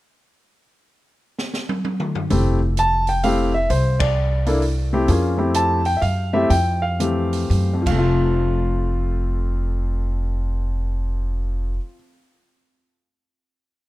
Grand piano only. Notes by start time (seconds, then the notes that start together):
2.31 A3 C4 E4 G4
2.79 A5
3.09 G5
3.24 A3 C4 E4 G4 F5
3.54 E5
3.70 C5
4.00 D5
4.47 A#3 D4 E4 A4
4.93 A3 C4 E4 G4
5.08 A#3 C#4 F4 G#4
5.38 A3 C4 E4 G4
5.55 A5
5.86 G5
5.97 E5
6.02 F5
6.33 A3 C4 E4 G4 E5
6.50 G5
6.82 F5
7.00 E3 A3 C4 G4
7.74 F2
7.82 F3
7.87 A3 F5
7.99 F4